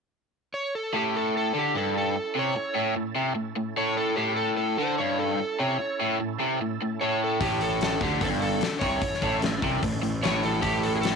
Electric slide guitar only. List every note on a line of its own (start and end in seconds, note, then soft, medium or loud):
0.54 0.72 C#5 medium
0.75 0.95 A4 medium
0.96 1.16 G4 medium
1.17 1.34 A4 medium
1.37 1.56 A4 medium
1.58 1.77 G4 medium
1.77 1.95 A4 medium
1.98 2.38 A4 medium
2.39 2.94 C#5 medium
3.78 3.96 C#5 medium
3.97 4.18 A4 medium
4.16 4.36 G4 medium
4.36 4.56 A4 medium
4.57 4.78 A4 medium
4.77 4.98 C5 medium
4.98 5.19 C#5 medium
5.19 5.60 A4 medium
5.59 6.16 C#5 medium
7.01 7.19 C#5 medium
7.24 7.41 A4 medium
7.41 7.62 G4 medium
7.62 7.80 A4 medium
7.82 8.02 A4 medium
8.02 8.22 G4 medium
8.21 8.27 A4 medium
8.42 8.79 A4 medium
8.79 9.37 C#5 medium
10.23 10.42 C#5 medium
10.45 10.65 A4 medium
10.62 10.84 G4 medium
10.83 10.95 A4 medium
10.95 11.01 G#4 medium
11.01 11.16 A4 medium